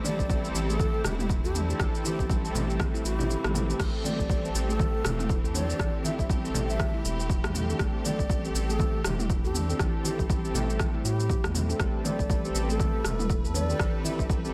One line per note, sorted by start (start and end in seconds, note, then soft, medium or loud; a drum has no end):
0.00 14.54 E3 medium
0.00 14.54 A3 medium
0.00 0.41 C4 medium
0.00 14.54 C4 medium
0.00 3.78 E4 medium
0.00 0.41 G4 medium
0.00 0.41 A4 loud
0.04 0.18 A3 medium
0.04 0.44 D5 medium
0.04 mid tom medium
0.04 high conga medium
0.04 shaker medium
0.19 0.49 A1 loud
0.19 kick medium
0.19 muted conga soft
0.19 shaker soft
0.30 0.43 G3 medium
0.30 kick loud
0.30 shaker soft
0.44 1.02 C4 loud
0.44 1.02 G4 medium
0.44 1.02 A4 loud
0.44 shaker soft
0.54 0.86 A1 loud
0.54 0.68 E3 medium
0.54 muted conga soft
0.54 shaker medium
0.69 0.78 A3 loud
0.69 1.04 A4 loud
0.69 shaker soft
0.79 kick loud
0.79 high conga loud
0.79 shaker medium
0.94 1.04 A3 medium
0.94 muted conga soft
1.04 1.45 E1 loud
1.04 1.14 G4 medium
1.04 cross-stick medium
1.04 high conga medium
1.04 low conga loud
1.04 shaker medium
1.19 1.28 E4 medium
1.19 1.26 G4 medium
1.19 mid tom medium
1.19 shaker soft
1.29 kick loud
1.29 muted conga medium
1.29 shaker medium
1.44 1.74 E2 medium
1.44 1.60 G4 medium
1.44 1.53 A4 medium
1.44 shaker soft
1.54 1.62 D4 medium
1.54 mid tom medium
1.54 high conga medium
1.54 shaker medium
1.69 2.41 C4 medium
1.69 2.41 G4 medium
1.69 2.41 A4 loud
1.69 high conga medium
1.69 shaker soft
1.79 1.89 A1 medium
1.79 1.93 E3 loud
1.79 kick loud
1.79 cross-stick loud
1.79 muted conga medium
1.79 shaker soft
1.95 shaker soft
2.04 2.18 E4 medium
2.04 2.23 G4 medium
2.04 high conga medium
2.04 shaker medium
2.19 2.49 A1 loud
2.19 kick medium
2.19 muted conga soft
2.19 shaker soft
2.29 2.37 G3 medium
2.29 kick loud
2.29 shaker medium
2.44 3.02 C4 loud
2.44 3.02 G4 medium
2.44 3.02 A4 loud
2.44 shaker soft
2.54 2.86 A1 loud
2.54 2.68 A3 loud
2.54 muted conga soft
2.54 low conga loud
2.54 shaker medium
2.69 2.78 G3 medium
2.69 shaker soft
2.80 kick loud
2.80 cross-stick medium
2.80 high conga medium
2.80 shaker medium
2.94 3.03 E4 loud
2.94 muted conga soft
2.94 shaker soft
3.04 3.36 A1 loud
3.04 3.44 G4 loud
3.04 shaker medium
3.19 3.28 E4 loud
3.19 low conga medium
3.19 shaker soft
3.29 muted conga medium
3.29 shaker medium
3.44 3.74 A1 loud
3.44 3.53 G4 medium
3.44 cross-stick loud
3.44 mid tom medium
3.44 high conga medium
3.44 shaker soft
3.54 3.62 A3 medium
3.54 mid tom medium
3.54 high conga medium
3.54 low conga medium
3.54 shaker medium
3.69 4.41 C4 medium
3.69 4.41 G4 medium
3.69 4.41 A4 medium
3.69 high conga medium
3.69 shaker soft
3.79 3.89 A1 loud
3.79 3.93 A3 medium
3.79 11.78 G4 medium
3.79 kick loud
3.79 cross-stick loud
3.79 crash medium
3.79 muted conga medium
3.79 shaker medium
4.04 4.18 A3 medium
4.04 4.44 D5 medium
4.04 mid tom medium
4.04 high conga medium
4.04 shaker medium
4.19 4.49 A1 loud
4.19 kick medium
4.19 muted conga soft
4.19 shaker soft
4.30 4.43 G3 medium
4.30 kick loud
4.30 shaker medium
4.44 5.02 C4 loud
4.44 5.02 G4 medium
4.44 5.02 A4 loud
4.44 shaker soft
4.54 4.86 A1 loud
4.54 4.68 E3 medium
4.54 muted conga medium
4.54 shaker loud
4.69 4.78 A3 loud
4.69 5.38 A4 loud
4.69 shaker soft
4.79 kick loud
4.79 high conga loud
4.79 shaker medium
4.94 5.04 A3 medium
4.94 muted conga soft
5.04 5.45 E1 loud
5.04 cross-stick loud
5.04 high conga medium
5.04 low conga loud
5.04 shaker loud
5.19 5.28 E4 medium
5.19 mid tom medium
5.19 shaker soft
5.29 kick loud
5.29 muted conga medium
5.29 shaker medium
5.44 5.74 E2 medium
5.44 5.53 A4 medium
5.44 shaker soft
5.54 5.62 D4 medium
5.54 5.94 D5 loud
5.54 mid tom medium
5.54 high conga medium
5.54 shaker medium
5.69 6.41 C4 medium
5.69 6.41 G4 medium
5.69 6.41 A4 medium
5.69 high conga medium
5.69 shaker soft
5.79 5.89 A1 loud
5.79 5.93 E3 loud
5.79 kick loud
5.79 cross-stick loud
5.79 muted conga medium
5.79 shaker medium
6.04 6.18 E4 medium
6.04 6.14 E5 medium
6.04 high conga loud
6.04 shaker loud
6.19 6.49 A1 loud
6.19 6.26 E5 medium
6.19 kick medium
6.19 muted conga soft
6.19 shaker soft
6.29 6.37 G3 medium
6.29 kick loud
6.29 shaker medium
6.44 7.02 C4 loud
6.44 7.02 G4 medium
6.44 7.02 A4 loud
6.44 shaker soft
6.54 6.86 A1 loud
6.54 6.68 A3 loud
6.54 muted conga medium
6.54 low conga loud
6.54 shaker medium
6.69 6.78 G3 medium
6.69 7.19 E5 loud
6.69 shaker soft
6.79 kick loud
6.79 cross-stick loud
6.79 high conga loud
6.79 shaker medium
6.94 7.03 E4 loud
6.94 muted conga soft
7.04 7.46 E1 loud
7.04 shaker loud
7.20 shaker soft
7.30 kick loud
7.30 muted conga medium
7.30 shaker medium
7.44 7.74 E2 medium
7.44 7.53 G3 medium
7.44 cross-stick loud
7.44 mid tom medium
7.44 high conga medium
7.44 shaker soft
7.54 7.68 A3 loud
7.54 mid tom medium
7.54 high conga medium
7.54 low conga medium
7.54 shaker loud
7.69 8.41 C4 medium
7.69 7.78 D4 medium
7.69 8.41 G4 medium
7.69 8.41 A4 medium
7.69 high conga medium
7.69 shaker soft
7.79 7.89 A1 loud
7.79 7.93 A3 medium
7.79 kick loud
7.79 cross-stick loud
7.79 muted conga medium
7.79 shaker medium
8.04 8.18 A3 medium
8.04 8.44 D5 medium
8.04 mid tom medium
8.04 high conga loud
8.04 shaker loud
8.19 8.49 A1 loud
8.19 kick medium
8.19 muted conga soft
8.19 shaker soft
8.30 8.43 G3 medium
8.30 kick loud
8.30 shaker medium
8.44 9.02 C4 loud
8.44 9.02 G4 medium
8.44 9.02 A4 loud
8.44 shaker soft
8.55 8.86 A1 loud
8.55 8.68 E3 medium
8.55 muted conga soft
8.55 shaker loud
8.69 8.79 A3 loud
8.69 9.04 A4 medium
8.69 shaker soft
8.79 kick loud
8.79 high conga loud
8.79 shaker medium
8.94 9.04 A3 medium
8.94 muted conga soft
9.04 9.46 E1 loud
9.04 9.14 G4 medium
9.04 cross-stick loud
9.04 high conga medium
9.04 low conga medium
9.04 shaker loud
9.19 9.28 E4 medium
9.19 9.26 G4 medium
9.19 mid tom medium
9.19 shaker soft
9.30 kick loud
9.30 muted conga medium
9.30 shaker medium
9.44 9.74 E2 medium
9.44 9.60 G4 medium
9.44 9.54 A4 medium
9.44 shaker soft
9.54 9.62 D4 medium
9.54 mid tom medium
9.54 high conga medium
9.54 shaker loud
9.69 10.41 C4 medium
9.69 10.41 G4 medium
9.69 10.41 A4 loud
9.69 high conga medium
9.69 shaker soft
9.79 9.89 A1 loud
9.79 9.93 E3 loud
9.79 kick loud
9.79 cross-stick medium
9.79 muted conga medium
9.79 shaker medium
10.04 10.18 E4 medium
10.04 10.23 G4 medium
10.04 high conga medium
10.04 shaker loud
10.19 10.49 A1 loud
10.19 kick medium
10.19 muted conga soft
10.19 shaker soft
10.30 10.37 G3 medium
10.30 kick loud
10.30 shaker medium
10.44 11.02 C4 loud
10.44 11.02 G4 medium
10.44 11.02 A4 loud
10.44 shaker soft
10.54 10.86 A1 loud
10.54 10.68 A3 loud
10.54 muted conga soft
10.54 low conga medium
10.54 shaker loud
10.69 10.79 G3 medium
10.69 shaker soft
10.79 kick loud
10.79 cross-stick medium
10.79 high conga medium
10.79 shaker medium
10.94 11.03 E4 loud
10.94 muted conga soft
11.04 11.36 A2 medium
11.04 11.44 G4 medium
11.04 shaker loud
11.20 shaker soft
11.29 kick loud
11.29 muted conga soft
11.29 shaker medium
11.44 11.74 E2 medium
11.44 11.53 G3 medium
11.44 cross-stick medium
11.44 mid tom medium
11.44 high conga medium
11.44 shaker soft
11.54 11.68 A3 loud
11.54 mid tom medium
11.54 high conga medium
11.54 low conga medium
11.54 shaker loud
11.69 12.41 C4 medium
11.69 11.78 D4 medium
11.69 12.41 G4 medium
11.69 12.41 A4 loud
11.69 high conga medium
11.69 shaker soft
11.79 11.89 A1 loud
11.79 11.93 A3 medium
11.79 14.54 B4 medium
11.79 kick loud
11.79 cross-stick medium
11.79 muted conga soft
11.79 shaker medium
12.04 12.18 A3 medium
12.04 12.44 D5 medium
12.04 mid tom medium
12.04 high conga loud
12.04 shaker medium
12.19 12.49 A1 loud
12.19 kick medium
12.19 shaker soft
12.29 12.43 G3 medium
12.29 kick loud
12.29 shaker medium
12.44 13.02 C4 loud
12.44 13.02 G4 medium
12.44 13.02 A4 loud
12.44 shaker soft
12.54 12.86 A1 loud
12.54 12.68 E3 medium
12.54 muted conga medium
12.54 shaker medium
12.69 12.78 A3 loud
12.69 13.38 A4 medium
12.69 shaker soft
12.80 kick loud
12.80 high conga loud
12.80 shaker medium
12.94 13.04 A3 medium
12.94 muted conga soft
13.04 13.46 E1 loud
13.04 cross-stick medium
13.04 high conga medium
13.04 low conga medium
13.04 shaker medium
13.19 13.28 E4 medium
13.19 mid tom medium
13.19 shaker soft
13.29 kick loud
13.29 muted conga soft
13.29 shaker medium
13.44 13.74 E2 medium
13.44 13.53 A4 medium
13.44 shaker soft
13.54 13.62 D4 medium
13.54 13.94 D5 loud
13.54 mid tom medium
13.54 high conga medium
13.54 shaker medium
13.69 14.41 C4 medium
13.69 14.41 G4 medium
13.69 14.41 A4 loud
13.69 high conga medium
13.69 shaker soft
13.80 13.89 A1 loud
13.80 13.93 E3 loud
13.80 kick loud
13.80 cross-stick medium
13.80 shaker medium
14.04 14.18 E4 medium
14.04 14.14 E5 medium
14.04 high conga medium
14.04 shaker medium
14.19 14.49 A1 loud
14.19 14.26 E5 medium
14.19 kick medium
14.19 muted conga soft
14.19 shaker soft
14.30 14.37 G3 medium
14.30 kick loud
14.30 shaker medium
14.44 14.54 C4 loud
14.44 14.54 G4 medium
14.44 14.54 A4 loud
14.44 shaker soft